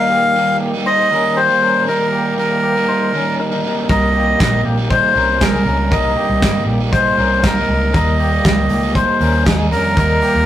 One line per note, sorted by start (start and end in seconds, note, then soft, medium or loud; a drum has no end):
0.00 0.35 D#3 medium
0.00 0.36 G3 medium
0.00 0.37 A#3 medium
0.00 0.37 D#4 medium
0.00 0.11 A#4 medium
0.00 0.57 F5 loud
0.10 0.58 A#3 medium
0.10 0.58 G4 medium
0.35 0.73 D#3 soft
0.35 0.74 G3 soft
0.35 0.74 A#3 medium
0.35 0.72 D#4 soft
0.61 0.87 A#3 soft
0.61 0.86 G4 medium
0.74 1.11 G3 soft
0.74 1.12 A#3 soft
0.74 1.12 D#4 medium
0.86 1.12 D#4 medium
0.86 1.11 C5 medium
0.86 1.39 D#5 loud
1.11 1.49 D#3 soft
1.11 1.49 G3 medium
1.11 1.48 A#3 medium
1.11 1.38 C#4 soft
1.11 1.47 D#4 medium
1.11 1.37 A#4 medium
1.37 1.63 A#3 medium
1.37 1.62 G4 medium
1.37 1.84 C5 medium
1.48 1.85 D#3 soft
1.48 1.86 G3 medium
1.48 1.87 A#3 soft
1.48 1.87 D#4 medium
1.62 1.88 C#4 medium
1.62 1.87 A#4 medium
1.86 2.36 D#3 medium
1.86 2.37 G3 medium
1.86 2.38 A#3 medium
1.86 2.13 D#4 medium
1.86 2.39 D#4 medium
1.86 2.35 A#4 medium
1.86 2.12 A#4 medium
2.13 2.61 A#3 medium
2.13 2.60 G4 medium
2.36 2.75 D#3 soft
2.36 2.76 G3 soft
2.36 2.76 A#3 soft
2.36 2.74 D#4 soft
2.36 3.35 A#4 medium
2.63 2.89 A#3 soft
2.63 2.88 G4 medium
2.75 3.13 G3 soft
2.75 3.14 A#3 soft
2.75 3.14 D#4 soft
2.89 3.14 D#4 medium
2.89 3.13 C5 medium
3.13 3.51 D#3 soft
3.13 3.52 G3 medium
3.13 3.51 A#3 medium
3.13 3.40 C#4 medium
3.13 3.50 D#4 medium
3.13 3.38 A#4 medium
3.40 3.87 D#4 medium
3.40 3.87 A#4 medium
3.52 3.64 D#3 medium
3.52 3.64 G3 medium
3.52 3.64 A#3 medium
3.52 3.64 D#4 medium
3.64 4.38 C3 medium
3.64 4.39 G3 medium
3.64 4.41 A#3 medium
3.64 4.41 D#4 medium
3.89 4.33 C2 loud
3.89 4.15 D#4 medium
3.89 4.14 A#4 medium
3.89 4.61 D#5 medium
3.89 kick medium
3.89 closed hi-hat medium
4.15 4.63 A#3 medium
4.15 4.62 G4 medium
4.39 4.62 A#1 medium
4.39 4.77 C3 soft
4.39 4.78 G3 soft
4.39 4.78 A#3 medium
4.39 4.76 D#4 medium
4.39 kick loud
4.39 snare loud
4.39 closed hi-hat medium
4.65 4.98 A#1 medium
4.65 4.91 A#3 soft
4.65 4.90 G4 medium
4.78 5.15 G3 soft
4.78 5.16 A#3 soft
4.78 5.16 D#4 soft
4.90 5.16 D#4 medium
4.90 5.15 C5 medium
4.90 5.44 C5 medium
4.90 kick medium
4.90 closed hi-hat medium
5.15 5.37 C2 medium
5.15 5.53 C3 medium
5.15 5.54 G3 soft
5.15 5.53 A#3 medium
5.15 5.41 C#4 soft
5.15 5.52 D#4 medium
5.15 5.41 A#4 medium
5.41 5.63 C2 medium
5.41 5.66 C4 medium
5.41 5.65 G#4 medium
5.41 5.94 A#4 medium
5.41 kick loud
5.41 snare medium
5.41 closed hi-hat medium
5.53 5.90 C3 medium
5.53 5.90 G3 medium
5.53 5.91 A#3 medium
5.53 5.92 D#4 medium
5.66 5.88 C#2 medium
5.66 5.92 C#4 medium
5.66 5.90 A#4 medium
5.91 6.13 C2 loud
5.91 6.41 C3 medium
5.91 6.43 G3 medium
5.91 6.44 A#3 medium
5.91 6.17 D#4 medium
5.91 6.45 D#4 medium
5.91 6.16 A#4 medium
5.91 6.64 D#5 medium
5.91 kick medium
5.91 closed hi-hat medium
6.17 6.65 A#3 medium
6.17 6.64 G4 medium
6.30 6.40 C2 medium
6.42 6.67 G1 medium
6.42 6.80 C3 soft
6.42 6.81 G3 medium
6.42 6.80 A#3 medium
6.42 6.79 D#4 medium
6.42 kick medium
6.42 snare loud
6.42 closed hi-hat medium
6.67 7.11 A#1 medium
6.67 6.93 A#3 medium
6.67 6.92 G4 medium
6.80 7.18 G3 soft
6.80 7.19 A#3 soft
6.80 7.18 D#4 soft
6.92 7.18 D#4 medium
6.92 7.17 C5 medium
6.92 7.45 C5 medium
6.92 kick medium
6.92 closed hi-hat medium
7.18 7.61 C2 medium
7.18 7.56 C3 soft
7.18 7.56 G3 soft
7.18 7.56 A#3 medium
7.18 7.44 C#4 medium
7.18 7.55 D#4 medium
7.18 7.42 A#4 medium
7.43 7.91 D#4 medium
7.43 7.91 A#4 medium
7.43 7.96 A#4 medium
7.43 kick loud
7.43 snare loud
7.43 closed hi-hat medium
7.56 7.94 C3 soft
7.56 7.93 G3 medium
7.56 7.94 A#3 medium
7.56 7.94 D#4 medium
7.69 7.90 C#2 medium
7.94 8.37 D#2 loud
7.94 8.43 D#3 medium
7.94 8.44 G3 medium
7.94 8.46 A#3 medium
7.94 8.20 D#4 medium
7.94 8.46 D#4 medium
7.94 8.19 A#4 medium
7.94 8.92 D#5 medium
7.94 kick loud
7.94 closed hi-hat medium
8.19 8.68 A#3 medium
8.19 8.67 G4 medium
8.19 open hi-hat medium
8.44 8.66 C#2 medium
8.44 8.83 D#3 soft
8.44 8.83 G3 medium
8.44 8.82 A#3 medium
8.44 8.81 D#4 medium
8.44 kick loud
8.44 snare loud
8.44 closed hi-hat medium
8.69 9.02 C#2 medium
8.69 8.96 A#3 soft
8.69 8.95 G4 medium
8.69 open hi-hat medium
8.82 9.20 G3 soft
8.82 9.21 A#3 soft
8.82 9.21 D#4 soft
8.95 9.21 D#4 soft
8.95 9.20 C5 medium
8.95 9.43 C5 medium
8.95 kick medium
8.95 closed hi-hat medium
9.20 9.42 D#2 medium
9.20 9.59 D#3 soft
9.20 9.59 G3 medium
9.20 9.58 A#3 medium
9.20 9.46 C#4 soft
9.20 9.57 D#4 medium
9.20 9.46 A#4 medium
9.20 open hi-hat medium
9.46 9.68 D#2 medium
9.46 9.72 D#4 medium
9.46 9.71 G#4 medium
9.46 kick loud
9.46 snare loud
9.46 closed hi-hat soft
9.58 9.95 D#3 medium
9.58 9.95 G3 medium
9.58 9.96 A#3 medium
9.58 9.96 D#4 medium
9.71 9.93 F2 medium
9.71 9.97 C#4 medium
9.71 9.96 A#4 medium
9.71 10.46 A#4 medium
9.71 open hi-hat medium
9.96 10.19 D#2 loud
9.96 10.46 D#3 medium
9.96 10.46 G3 medium
9.96 10.46 A#3 medium
9.96 10.23 D#4 medium
9.96 10.46 D#4 medium
9.96 10.22 A#4 medium
9.96 kick medium
9.96 closed hi-hat medium
10.22 10.46 A#3 medium
10.22 10.46 G4 medium
10.22 open hi-hat medium
10.35 10.46 D#2 medium